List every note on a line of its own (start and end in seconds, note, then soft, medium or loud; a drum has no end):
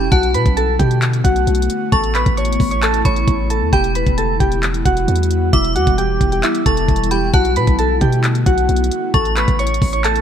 0.00 0.10 E1 loud
0.00 0.10 C#4 medium
0.00 0.11 B5 medium
0.12 0.36 B1 loud
0.12 1.91 D3 medium
0.12 3.69 A3 medium
0.12 3.69 B3 medium
0.12 1.90 F#4 medium
0.12 0.31 F#4 medium
0.12 0.30 F#5 medium
0.12 1.43 A5 loud
0.12 kick loud
0.12 closed hi-hat medium
0.23 closed hi-hat medium
0.34 0.45 B2 loud
0.34 0.53 B4 medium
0.34 0.53 B5 medium
0.34 closed hi-hat medium
0.46 0.78 B1 loud
0.46 kick loud
0.46 closed hi-hat medium
0.57 0.76 A4 medium
0.57 0.75 A5 medium
0.57 closed hi-hat medium
0.79 1.23 B2 loud
0.79 0.98 G4 medium
0.79 0.98 G5 medium
0.79 kick medium
0.79 closed hi-hat medium
0.91 closed hi-hat medium
1.02 clap loud
1.02 closed hi-hat medium
1.13 closed hi-hat medium
1.24 1.46 B1 loud
1.24 1.88 F#4 medium
1.24 1.88 F#5 medium
1.24 kick loud
1.24 closed hi-hat loud
1.36 closed hi-hat medium
1.47 1.69 B1 loud
1.47 closed hi-hat medium
1.55 closed hi-hat medium
1.62 closed hi-hat medium
1.70 closed hi-hat medium
1.92 2.25 A1 loud
1.92 3.71 C#3 medium
1.92 3.71 E4 medium
1.92 2.11 A4 medium
1.92 2.11 A5 medium
1.92 3.01 C#6 loud
1.92 kick loud
1.92 closed hi-hat medium
2.04 closed hi-hat medium
2.15 2.34 B4 medium
2.15 2.33 B5 medium
2.15 clap loud
2.15 closed hi-hat medium
2.26 2.59 A1 loud
2.26 kick loud
2.26 closed hi-hat medium
2.37 2.70 C#5 medium
2.37 2.69 C#6 medium
2.37 closed hi-hat medium
2.45 closed hi-hat medium
2.53 closed hi-hat medium
2.60 3.03 A1 loud
2.60 kick medium
2.60 open hi-hat medium
2.71 2.81 C#5 medium
2.71 2.80 C#6 medium
2.71 closed hi-hat medium
2.83 3.01 A4 medium
2.83 3.01 A5 loud
2.83 clap loud
2.83 closed hi-hat medium
2.94 closed hi-hat medium
3.05 3.27 A1 loud
3.05 3.48 C#5 medium
3.05 3.69 B5 medium
3.05 3.47 C#6 medium
3.05 kick loud
3.05 closed hi-hat loud
3.16 closed hi-hat medium
3.28 3.63 A1 loud
3.28 kick loud
3.28 closed hi-hat medium
3.50 3.69 A4 medium
3.50 3.69 A5 medium
3.50 closed hi-hat medium
3.61 3.72 E2 loud
3.73 4.05 E1 loud
3.73 7.30 E3 medium
3.73 7.30 G3 medium
3.73 9.10 B3 medium
3.73 5.51 E4 medium
3.73 3.92 G4 medium
3.73 3.91 G5 loud
3.73 5.04 B5 loud
3.73 kick loud
3.73 closed hi-hat medium
3.84 closed hi-hat medium
3.95 4.14 B4 medium
3.95 4.14 B5 medium
3.95 closed hi-hat medium
4.06 4.39 E1 loud
4.06 kick medium
4.06 closed hi-hat medium
4.18 4.37 A4 medium
4.18 4.36 A5 medium
4.18 closed hi-hat medium
4.40 4.84 E1 loud
4.40 4.59 G4 medium
4.40 4.59 G5 medium
4.40 kick medium
4.40 closed hi-hat medium
4.52 closed hi-hat medium
4.63 clap loud
4.63 closed hi-hat medium
4.74 closed hi-hat medium
4.85 5.07 E1 loud
4.85 5.50 F#4 medium
4.85 5.49 F#5 medium
4.85 kick loud
4.85 closed hi-hat loud
4.97 closed hi-hat medium
5.08 5.51 E2 loud
5.08 closed hi-hat medium
5.16 closed hi-hat medium
5.23 closed hi-hat medium
5.31 closed hi-hat medium
5.53 5.77 E1 loud
5.53 9.10 E4 medium
5.53 5.72 E4 medium
5.53 5.72 E5 medium
5.53 6.62 D6 loud
5.53 kick loud
5.53 closed hi-hat medium
5.64 closed hi-hat medium
5.76 5.86 E2 loud
5.76 5.95 F#4 medium
5.76 5.94 F#5 medium
5.76 closed hi-hat medium
5.87 6.19 E1 loud
5.87 kick loud
5.87 closed hi-hat medium
5.98 6.30 G4 medium
5.98 6.30 G5 medium
5.98 closed hi-hat medium
6.21 6.42 E1 loud
6.21 kick medium
6.21 closed hi-hat medium
6.32 6.42 G4 medium
6.32 6.41 G5 medium
6.32 closed hi-hat medium
6.43 6.62 E4 medium
6.43 6.62 E5 medium
6.43 clap loud
6.43 closed hi-hat medium
6.55 closed hi-hat medium
6.66 6.88 E1 loud
6.66 7.09 A4 medium
6.66 7.08 A5 medium
6.66 7.08 C#6 medium
6.66 kick loud
6.66 closed hi-hat loud
6.77 closed hi-hat medium
6.88 7.32 E1 loud
6.88 kick loud
6.88 closed hi-hat medium
6.96 closed hi-hat medium
7.04 closed hi-hat medium
7.11 7.30 G4 medium
7.11 7.30 G5 medium
7.11 7.32 B5 medium
7.11 closed hi-hat medium
7.33 7.58 B1 loud
7.33 9.12 D3 medium
7.33 10.21 A3 medium
7.33 7.53 F#4 medium
7.33 7.52 F#5 loud
7.33 8.65 A5 loud
7.33 kick loud
7.33 closed hi-hat medium
7.45 closed hi-hat medium
7.56 7.67 B2 loud
7.56 7.75 B4 medium
7.56 7.75 B5 medium
7.56 closed hi-hat medium
7.67 8.00 B1 loud
7.67 kick loud
7.67 closed hi-hat medium
7.79 7.98 A4 medium
7.79 7.97 A5 medium
7.79 closed hi-hat medium
8.01 8.45 B2 loud
8.01 8.20 G4 medium
8.01 8.20 G5 medium
8.01 kick medium
8.01 closed hi-hat medium
8.12 closed hi-hat medium
8.24 clap loud
8.24 closed hi-hat medium
8.35 closed hi-hat medium
8.46 8.68 B1 loud
8.46 9.10 F#4 medium
8.46 9.10 F#5 medium
8.46 kick loud
8.46 closed hi-hat loud
8.58 closed hi-hat medium
8.69 8.91 B1 loud
8.69 closed hi-hat medium
8.76 closed hi-hat medium
8.84 closed hi-hat medium
8.91 closed hi-hat medium
9.14 9.47 A1 loud
9.14 10.21 C#3 medium
9.14 10.21 B3 medium
9.14 10.21 E4 medium
9.14 9.33 A4 medium
9.14 9.32 A5 medium
9.14 10.21 C#6 loud
9.14 kick loud
9.14 closed hi-hat medium
9.25 closed hi-hat medium
9.37 9.56 B4 medium
9.37 9.55 B5 medium
9.37 clap loud
9.37 closed hi-hat medium
9.48 9.80 A1 loud
9.48 kick loud
9.48 closed hi-hat medium
9.59 9.91 C#5 medium
9.59 9.91 C#6 medium
9.59 closed hi-hat medium
9.67 closed hi-hat medium
9.74 closed hi-hat medium
9.82 10.21 A1 loud
9.82 kick medium
9.82 open hi-hat medium
9.93 10.03 C#5 medium
9.93 10.02 C#6 medium
9.93 closed hi-hat medium
10.04 10.21 A4 medium
10.04 10.21 A5 loud
10.04 clap loud
10.04 closed hi-hat medium
10.16 closed hi-hat medium